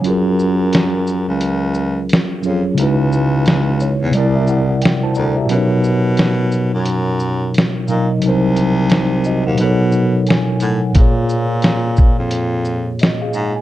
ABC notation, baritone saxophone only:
X:1
M:4/4
L:1/16
Q:"Swing 16ths" 1/4=88
K:F#
V:1 name="Baritone saxophone" clef=bass
F,,6- F,, C,,4- C,, z2 E,, z | C,,6- C,, =E,, =C,,4 z2 =D,, z | B,,6- B,, F,,4- F,, z2 A,, z | =C,,6- C,, _E,, B,,4 z2 =A,, z |
A,,6- A,, E,,4- E,, z2 G,, z |]